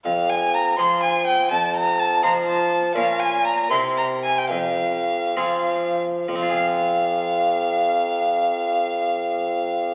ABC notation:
X:1
M:6/8
L:1/16
Q:3/8=72
K:Fm
V:1 name="Violin"
f2 a2 b2 c'2 a2 g2 | =a2 b2 a2 b2 a4 | f2 a2 b2 c'2 b2 a g | f8- f2 z2 |
f12- | f12 |]
V:2 name="Harpsichord"
F,,6 [F,FAc]6 | F,,6 [F,EFc]6 | [B,,DFB]6 [C,C=EB]6 | F,,6 [F,CFA]6 |
[F,CFAf]12- | [F,CFAf]12 |]
V:3 name="Bassoon" clef=bass
F,,6 F,6 | F,,6 F,6 | B,,6 C,6 | F,,6 F,6 |
F,,12- | F,,12 |]